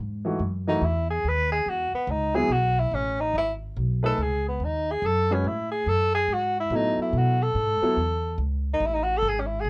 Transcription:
0.00 upright bass G#2
0.24 grand piano E3 A3 D#4 F#4
0.39 upright bass F#2
0.67 grand piano E3 A3 D#4 F#4, tenor saxophone D#4
0.81 upright bass E2, tenor saxophone E4
1.11 tenor saxophone G#4
1.25 upright bass D#2
1.29 tenor saxophone B4
1.52 tenor saxophone G#4
1.66 upright bass E2, tenor saxophone F#4
1.93 tenor saxophone B3, muted upright bass stroke
2.07 upright bass C#2, tenor saxophone D#4
2.34 grand piano F#3 B3 E4 G#4, tenor saxophone G#4
2.49 upright bass B1, tenor saxophone F#4
2.80 tenor saxophone E4
2.92 upright bass A1, tenor saxophone C#4
3.20 tenor saxophone D#4
3.34 upright bass G#1, tenor saxophone E4
3.76 upright bass B1
4.03 grand piano A3 D#4 G#4 B4, tenor saxophone A4
4.18 upright bass C#2
4.22 tenor saxophone G#4
4.49 tenor saxophone B3
4.60 upright bass D#2
4.65 tenor saxophone D#4
4.91 tenor saxophone G#4
5.02 upright bass F#2, tenor saxophone A4
5.30 grand piano G#3 C#4 F#4 B4, tenor saxophone C#4
5.44 upright bass A2, tenor saxophone E4
5.72 tenor saxophone G#4
5.86 upright bass F#2, tenor saxophone A4
6.15 tenor saxophone G#4
6.28 upright bass G#2
6.33 tenor saxophone F#4
6.60 tenor saxophone E4
6.70 upright bass A2, grand piano F#3 B3 E4 A4
6.76 tenor saxophone D#4
6.98 tenor saxophone E4, muted upright bass stroke
7.13 upright bass B2
7.18 tenor saxophone F#4
7.43 tenor saxophone A4
7.55 upright bass G#2
7.82 grand piano F#3 B3 E4 A4, muted upright bass stroke
7.97 upright bass E2
8.38 upright bass C#2
8.74 tenor saxophone D#4
8.80 upright bass A1
8.86 tenor saxophone E4
8.95 tenor saxophone D#4
9.04 tenor saxophone F#4
9.18 tenor saxophone A4
9.22 upright bass G#1
9.28 tenor saxophone G#4
9.40 tenor saxophone C#4
9.47 tenor saxophone E4
9.61 upright bass B1, tenor saxophone G#4

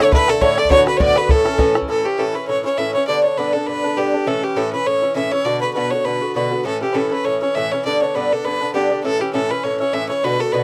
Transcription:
0.00 bouzouki D3 A3 E4, fiddle C#5, bodhran
0.12 bouzouki A2 D3 A3 E4, fiddle B4, bodhran
0.28 bouzouki D3 A3 E4, fiddle A4, bodhran
0.41 bouzouki A2 D3 A3 E4, fiddle C#5, bodhran
0.58 bouzouki D3 A3 E4, fiddle D5, bodhran
0.65 bodhran
0.70 bouzouki A2 D3 B3 F#4, fiddle C#5, bodhran
0.86 bouzouki D3 B3 F#4, fiddle B4, bodhran
0.97 bouzouki A2 D3 B3 F#4, fiddle C#5 D5, bodhran
1.02 fiddle D5
1.08 bodhran
1.16 bouzouki D3 B3 F#4, fiddle B4, bodhran
1.29 bouzouki A2 E3 C#4 E4, fiddle A4, bodhran
1.45 bouzouki E3 C#4 E4, bodhran
1.58 bouzouki A2 E3 C#4 E4, bodhran
1.75 bouzouki E3 C#4 E4, bodhran
1.82 bodhran
1.88 bouzouki A2 E3 C#4 E4, fiddle A4
2.04 bouzouki E3 C#4 E4, fiddle G4
2.18 bouzouki A2 E3 C#4 E4, fiddle A4
2.34 bouzouki E3 C#4 E4, fiddle B4
2.48 bouzouki A2 E3 C#4 E4, fiddle C#5
2.64 bouzouki E3 C#4 E4, fiddle C#5
2.78 bouzouki A2 E3 C#4 E4, fiddle E5
2.94 bouzouki E3 C#4 E4, fiddle C#5
3.07 bouzouki G2 D3 B3 D4, fiddle D5
3.23 bouzouki D3 B3 D4, fiddle C#5
3.38 bouzouki G2 D3 B3 D4, fiddle B4
3.53 bouzouki D3 B3 D4, fiddle A4
3.67 bouzouki G2 D3 B3 D4, fiddle B4
3.84 bouzouki D3 B3 D4
3.97 bouzouki G2 D3 B3 D4, fiddle G4
4.14 bouzouki D3 B3 D4
4.26 bouzouki A2 E3 C#4 E4, fiddle A4
4.42 bouzouki E3 C#4 E4, fiddle G4
4.56 bouzouki A2 E3 C#4 E4, fiddle A4
4.73 bouzouki E3 C#4 E4, fiddle B4
4.86 bouzouki A2 E3 C#4 E4, fiddle C#5
5.02 bouzouki E3 C#4 E4
5.15 bouzouki A2 E3 C#4 E4, fiddle E5
5.32 bouzouki E3 C#4 E4, fiddle C#5
5.45 bouzouki B2 D3 B3 F#4, fiddle D5
5.61 bouzouki D3 B3 F#4, fiddle B4
5.73 bouzouki B2 D3 B3 F#4, fiddle B4
5.91 bouzouki D3 B3 F#4, fiddle C#5
6.05 bouzouki B2 D3 B3 F#4, fiddle B4
6.21 bouzouki D3 B3 F#4
6.35 bouzouki B2 D3 B3 F#4, fiddle B4
6.51 bouzouki D3 B3 F#4
6.65 bouzouki A2 E3 C#4 E4, fiddle A4
6.81 bouzouki E3 C#4 E4, fiddle G4
6.92 bouzouki A2 E3 C#4 E4, fiddle A4 B4
7.11 bouzouki E3 C#4 E4, fiddle B4
7.24 bouzouki A2 E3 C#4 E4, fiddle C#5
7.42 bouzouki E3 C#4 E4, fiddle C#5
7.55 bouzouki A2 E3 C#4 E4, fiddle E5
7.71 bouzouki E3 C#4 E4, fiddle C#5
7.85 bouzouki G2 D3 B3 D4, fiddle D5
8.01 bouzouki D3 B3 D4, fiddle C#5
8.15 bouzouki G2 D3 B3 D4, fiddle B4
8.32 bouzouki D3 B3 D4, fiddle A4
8.44 bouzouki G2 D3 B3 D4, fiddle B4
8.61 bouzouki D3 B3 D4
8.74 bouzouki G2 D3 B3 D4, fiddle G4
8.90 bouzouki D3 B3 D4
9.04 bouzouki A2 E3 C#4 E4, fiddle A4
9.19 bouzouki E3 C#4 E4, fiddle G4
9.33 bouzouki A2 E3 C#4 E4, fiddle A4
9.50 bouzouki E3 C#4 E4, fiddle B4
9.63 bouzouki A2 E3 C#4 E4, fiddle C#5
9.80 bouzouki E3 C#4 E4, fiddle C#5
9.93 bouzouki A2 E3 C#4 E4, fiddle E5
10.09 bouzouki E3 C#4 E4, fiddle C#5
10.23 bouzouki B2 D3 B3 F#4, fiddle B4
10.39 bouzouki D3 B3 F#4, fiddle A4
10.52 bouzouki B2 D3 B3 F#4, fiddle B4

